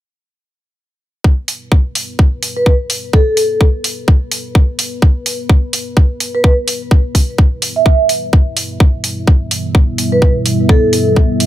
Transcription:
1.24 G3 B3 E4 B4, kick
1.48 open hi-hat
1.72 kick
1.95 open hi-hat
2.19 kick
2.43 open hi-hat
2.57 B4
2.66 kick
2.90 open hi-hat
3.13 A4, kick
3.37 open hi-hat
3.61 kick
3.84 open hi-hat
4.08 kick
4.32 open hi-hat
4.55 kick
4.79 open hi-hat
5.02 kick
5.26 open hi-hat
5.49 kick
5.73 open hi-hat
5.97 kick
6.20 open hi-hat
6.35 B4
6.44 kick
6.68 open hi-hat
6.91 kick
7.15 kick, open hi-hat
7.38 kick
7.62 open hi-hat
7.76 E5
7.86 kick
8.09 open hi-hat
8.33 kick
8.57 open hi-hat
8.80 E5, kick
9.04 open hi-hat
9.27 kick
9.51 open hi-hat
9.75 kick
9.98 open hi-hat
10.12 B4
10.22 kick
10.46 open hi-hat
10.69 A4, kick
10.93 open hi-hat
11.16 kick
11.40 open hi-hat

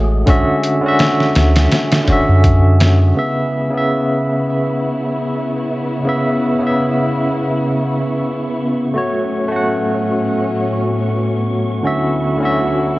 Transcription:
Already playing: A1 G#3 A3 F#4 G#4 F#5
0.26 D3 C#4 F#4 E5, kick, closed hi-hat
0.63 closed hi-hat
0.81 D3 C#4
0.86 F#4 E5
0.99 snare, closed hi-hat
1.20 snare
1.35 D2, snare, closed hi-hat
1.56 snare, closed hi-hat
1.71 snare, closed hi-hat
1.92 snare, closed hi-hat
2.04 D3 C#4, kick, closed hi-hat
2.10 F#4 E5
2.28 F#2
2.44 kick, closed hi-hat
2.80 snare, closed hi-hat
3.15 C#3 B3 E4 E5 C#6
3.70 C#3 B3
3.78 E5
6.05 C#3 B3
6.09 E5
6.59 C#3 B3
6.67 E5
8.94 A2 F#3 A3 C#4 F#4
8.98 C#5
9.48 A3 F#4
9.56 F#5
11.83 D2 D3 F#3 C#4 E4 F#4
11.87 E5
12.37 D3 C#4
12.42 F#4 E5

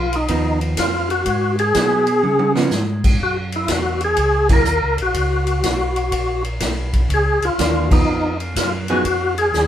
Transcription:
Already playing: B1 F4
0.13 D#4, ride
0.28 D#2 F3 B3 D#4, kick, ride
0.61 ride
0.77 F2 F4, kick, snare, hi-hat pedal, ride
1.10 F#4, ride
1.26 G#2, kick, ride
1.59 G#4, ride
1.74 B2 F#3 B3 D#4, kick, snare, hi-hat pedal, ride
2.07 ride
2.23 C#3, high tom
2.39 high tom
2.55 F3 B3 D#4, snare
2.71 G#2, snare, hi-hat pedal
3.04 kick, crash
3.20 F#2 F#4, kick
3.52 E4, ride
3.68 E2 F#4, kick, snare, hi-hat pedal, ride
4.01 G#4, ride
4.17 C#2, kick, ride
4.49 F#3 A#3 E4 G#4 A#4, kick, crash
4.65 D#2, hi-hat pedal
4.82 C#2
4.98 A#1, ride
5.02 F#4
5.14 C#2, kick, ride
5.47 ride
5.63 B1, kick, snare, hi-hat pedal, ride
5.96 ride
6.12 A#1, kick, ride
6.44 ride
6.60 B1, kick, snare, hi-hat pedal, ride
6.93 kick, ride
7.09 C#2, kick, ride
7.14 G#4
7.42 C#2 F4, ride
7.58 D#2 E3 A#3 D4, kick, snare, hi-hat pedal, ride
7.91 F3 B3 D#4, kick, crash
8.07 F2
8.40 ride
8.55 F#2 F4, kick, snare, hi-hat pedal, ride
8.88 F3 B3 D#4 F#4 G#4, ride
9.04 F2, kick, ride
9.38 G#4, ride
9.54 D#2, snare, hi-hat pedal

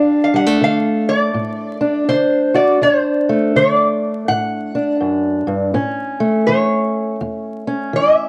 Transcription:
Already playing: D2 D4 F5
0.24 F5
0.34 G3 F#5
0.46 A3
0.61 D3 F5
1.09 D5
1.34 A2
1.81 D4
2.09 D3 C5
2.54 F#4 D5
2.81 D2 D4 C5
3.29 A3
3.56 D3 D5
4.28 A2 F#5
4.75 D4
5.00 F#2
5.47 G2
5.74 A2 C#4
6.20 A3
6.47 E3 C#5
7.21 E2
7.67 C#4
7.93 E3 E5

